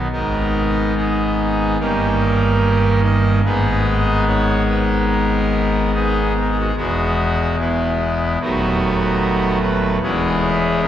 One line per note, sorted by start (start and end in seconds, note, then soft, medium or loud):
0.12 1.76 G#1 medium
0.12 1.76 G#2 medium
0.12 1.76 D#3 medium
0.12 0.95 B3 soft
0.12 0.94 D#4 medium
0.12 0.94 A#4 loud
0.96 1.78 B3 medium
0.96 1.78 D#4 medium
0.96 1.77 G#4 medium
1.79 3.42 G1 medium
1.79 3.42 G2 medium
1.79 3.41 D#3 soft
1.79 3.41 A#3 medium
1.79 3.42 C#4 soft
1.79 3.01 D#4 medium
1.79 3.01 G4 medium
1.79 3.01 A#4 loud
3.04 3.39 D#5 loud
3.45 6.71 G#1 medium
3.45 6.72 G#2 medium
3.45 6.71 D#3 medium
3.45 6.71 G#3 medium
3.45 5.92 B3 soft
3.45 4.25 D#4 medium
3.45 4.25 G#4 medium
3.45 4.25 B4 loud
4.28 4.62 C#5 loud
4.68 5.04 B4 loud
5.11 5.90 A#4 loud
5.94 6.33 B3 medium
5.94 6.33 D#4 medium
5.94 6.33 G#4 loud
6.40 6.48 A#4 medium
6.50 6.57 G#4 medium
6.59 6.66 F#4 medium
6.68 6.75 G#4 medium
6.76 8.37 E1 medium
6.76 8.37 E2 medium
6.76 7.58 G#3 medium
6.76 7.56 B3 medium
6.76 7.56 F#4 loud
7.59 8.39 G#3 medium
7.59 8.39 B3 medium
7.59 8.38 E4 medium
8.41 9.98 D#1 medium
8.41 9.98 D#2 medium
8.41 9.98 F#3 medium
8.41 9.98 A3 medium
8.41 9.58 B3 medium
8.41 9.59 D#4 medium
8.41 9.58 F#4 loud
9.62 9.96 B4 loud
10.02 10.88 E1 medium
10.02 10.88 E2 medium
10.02 10.88 E3 medium
10.02 10.88 G#3 medium
10.02 10.88 B3 medium
10.02 10.81 C#4 medium
10.02 10.81 E4 medium
10.02 10.81 G#4 loud
10.83 10.88 A#4 loud